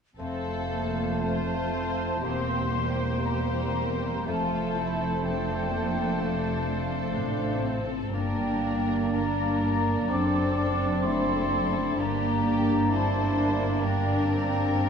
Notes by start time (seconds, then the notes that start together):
0.18 F1 F2 A3 C4 A4 C5 F5
0.46 A3
0.71 A#3 F4
0.97 C5
1.21 A3 F4 A4 C5 A5
1.48 F5
1.74 C4 A4
1.99 F4
2.24 E1 E2 A#3 C4 G4 C5 C6
2.50 A#3
2.75 G3 G4
3.00 C5
3.25 A#4 C5 A#5
3.50 G5
3.76 A#4
4.02 G4
4.27 F1 F2 A3 C4 F4 A4 C5 A5
4.53 A3
4.76 E4 F4
5.01 C5
5.24 C4 D4 A4 G5
5.48 F5
5.70 A#3 A4
5.95 F4
6.18 C3 A3 F5
6.43 A3
6.67 A3 F4
6.92 C5
7.15 A1 A2 C4 D4 A4
7.40 F5
7.64 C4 A4
7.90 F4
8.13 G1 G2 A#3 D4 A#4 D5 G5
8.40 A#3
8.64 A#3 D4
8.89 A#4
9.13 D4 A#4 A#5
9.38 D5
9.62 A#4
9.87 D4
10.09 F#1 F#2 C4 D4 A4 D6
10.35 C4
10.58 D4
10.82 A4
11.04 A3 E4 A4 C5 C6
11.29 D5
11.53 C5
11.76 D4
11.97 G1 G2 A#3 D4 G4 D5 A#5
12.24 A#3
12.46 D4 G4
12.70 G4
12.91 C4 E4 A#4 C5 A5
13.15 D5
13.36 D4 A#4
13.60 D4
13.81 D3 D4 A#4 G5
14.06 A#3
14.29 C4 D4
14.53 G4
14.75 D4 A#4